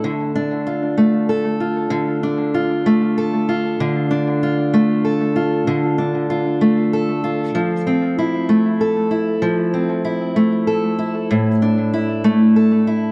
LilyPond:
\new Staff \with { instrumentName = "Steel-string acoustic guitar" } { \time 6/8 \key d \minor \tempo 4. = 64 d8 d'8 f'8 a8 a'8 f'8 | d8 d'8 f'8 a8 a'8 f'8 | d8 d'8 f'8 a8 a'8 f'8 | d8 d'8 f'8 a8 a'8 f'8 |
f8 c'8 e'8 a8 a'8 e'8 | f8 c'8 e'8 a8 a'8 e'8 | a,8 d'8 e'8 a8 a'8 e'8 | }